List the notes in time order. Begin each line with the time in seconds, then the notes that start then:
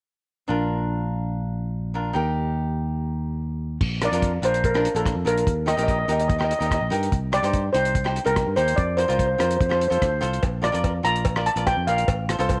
0.48 A#1 D4 F4 A#4
1.94 D4 F4 A#4
2.13 D#2 D#4 G4 A#4
3.81 A#1, kick, crash
4.01 D4 F4 A#4 D5, cross-stick, closed hi-hat
4.11 F2 D4 F4 A#4, closed hi-hat
4.22 kick, closed hi-hat
4.42 A#1 D4 F4 A#4 C5, closed hi-hat
4.54 closed hi-hat
4.64 A#4, kick, closed hi-hat
4.74 D4 F4 A#4, cross-stick
4.85 closed hi-hat
4.95 A#1 D4 F4 A4 A#4, closed hi-hat
5.06 kick, cross-stick, closed hi-hat
5.15 F2
5.25 A#1 D4 F4 A#4, closed hi-hat
5.37 closed hi-hat
5.47 D#2, kick, closed hi-hat
5.66 D#4 G4 A#4 D#5, cross-stick, closed hi-hat
5.77 A#1 D#4 G4 A#4 D#5, closed hi-hat
5.84 D#5
5.88 D#5, kick, closed hi-hat
5.99 D#5
6.06 D#2 D#4 G4 A#4 D#5, closed hi-hat
6.13 D#5
6.20 D#5, closed hi-hat
6.28 D#5, kick, closed hi-hat
6.36 D#4 G4 A#4 D#5
6.41 D#5, cross-stick
6.51 D#5, closed hi-hat
6.59 D#2 D#4 G4 A#4 D#5, closed hi-hat
6.67 D#5
6.71 D#5, kick, cross-stick, closed hi-hat
6.81 A#1
6.90 G2 D#4 G4 A#4, closed hi-hat
7.03 closed hi-hat
7.12 C2, kick, closed hi-hat
7.32 D#4 G4 C5 D5, cross-stick, closed hi-hat
7.42 G2 D#4 G4 C5, closed hi-hat
7.53 kick, closed hi-hat
7.73 C2 D#4 G4 C5, closed hi-hat
7.85 closed hi-hat
7.95 kick, closed hi-hat
8.04 D#4 G4 C5, cross-stick
8.16 closed hi-hat
8.24 C2 D#4 G4 A#4, closed hi-hat
8.36 kick, cross-stick, closed hi-hat
8.47 G2
8.56 D#2 D#4 G4 C5, closed hi-hat
8.68 closed hi-hat
8.76 F2 D5, kick, closed hi-hat
8.97 F4 A#4 C5, closed hi-hat
9.05 F4 A#4 C5
9.09 C2 C5, closed hi-hat
9.19 C5, kick, closed hi-hat
9.26 C5
9.35 F4 C5
9.39 F2 A#4 C5, cross-stick, closed hi-hat
9.49 C5, closed hi-hat
9.57 F2 C5, kick
9.61 closed hi-hat
9.66 F4 A4 C5
9.70 C5, cross-stick
9.80 C5, closed hi-hat
9.88 F2 F4 A4 C5, closed hi-hat
9.95 C5
10.02 D2 C5, kick, cross-stick, closed hi-hat
10.21 C2 F4 A4 C5, closed hi-hat
10.33 closed hi-hat
10.43 A#1, kick, closed hi-hat, cowbell
10.62 F4 A#4 D5, cross-stick, closed hi-hat
10.72 F2 F4 A#4 D5, closed hi-hat
10.84 kick, closed hi-hat, cowbell
11.03 A#1 F4 A#4 D5 A#5, closed hi-hat
11.16 closed hi-hat
11.25 kick, closed hi-hat, cowbell
11.36 F4 A#4 D5, cross-stick
11.46 A5, closed hi-hat
11.56 A#1 F4 A#4 D5, closed hi-hat
11.67 G5, kick, cross-stick, closed hi-hat, cowbell
11.77 F2
11.87 A#1 F4 A#4 D5 F5, closed hi-hat
11.98 closed hi-hat
12.08 A1, kick, closed hi-hat, cowbell
12.29 F4 A4 C5, cross-stick, closed hi-hat
12.39 C2 F4 A4 C5, closed hi-hat
12.49 kick, closed hi-hat, cowbell